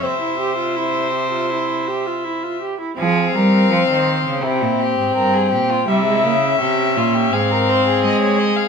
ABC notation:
X:1
M:4/4
L:1/16
Q:1/4=83
K:Fm
V:1 name="Violin"
=e12- e2 z2 | f8 g8 | =e8 f4 _e d e f |]
V:2 name="Violin"
c12- c2 z2 | A2 B2 c4 =E2 G2 B A G F | =E4 G2 F G A B c A4- A |]
V:3 name="Viola"
C =E G F E2 G F E2 G F E F G E | C8 C8 | G, A, B, D4- D C8 |]
V:4 name="Cello" clef=bass
C,12- C,2 z2 | F,2 G,2 F, E,2 D, C, B,,2 A,, G,,2 B,,2 | C,2 D,2 C,2 B,,2 A,,4 A,4 |]